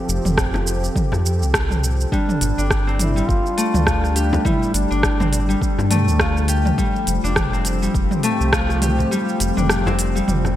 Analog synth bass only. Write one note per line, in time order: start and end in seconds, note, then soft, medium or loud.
0.08 0.20 F1 medium
0.25 0.89 F1 medium
1.12 1.43 F2 medium
1.41 2.06 C2 medium
2.41 2.53 G1 medium
2.58 3.22 G1 medium
3.29 3.40 G1 medium
3.74 4.39 D2 medium
4.74 4.86 G1 medium
4.91 5.55 G1 medium
5.78 6.09 G2 medium
6.07 6.72 D2 medium
7.07 7.19 F1 medium
7.24 7.88 F1 medium
7.95 8.06 F1 medium
8.40 9.05 C2 medium
9.40 9.52 F1 medium
9.57 10.22 F1 medium
10.28 10.56 F1 medium